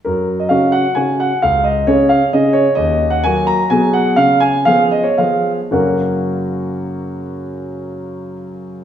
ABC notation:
X:1
M:3/4
L:1/16
Q:1/4=126
K:F#
V:1 name="Grand piano"
A3 d e2 f2 g2 f2 | e2 d2 c2 e2 d2 c2 | d3 f g2 a2 g2 f2 | e2 g2 e2 d c e4 |
[F,,C,A,CFAf]12- | [F,,C,A,CFAf]12 |]
V:2 name="Grand piano"
F,,4 [C,CF]4 [C,CF]4 | C,,4 [C,CG]4 [C,CG]4 | D,,4 [F,A,F]4 [B,,F,B,G]4 | C,4 [E,B,G]4 [E,B,G]4 |
z12 | z12 |]